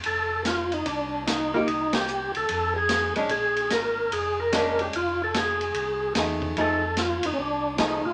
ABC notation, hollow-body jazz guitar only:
X:1
M:4/4
L:1/8
Q:"Swing" 1/4=147
K:Bb
V:1 name="Hollow-body jazz guitar"
z6 z [B,EG] | z6 z [_A,_D=D] | z6 [_A,^CD]2 | z6 [A,E^G]2 |
[F,A,E^G] z4 z [F,A,EG] z |]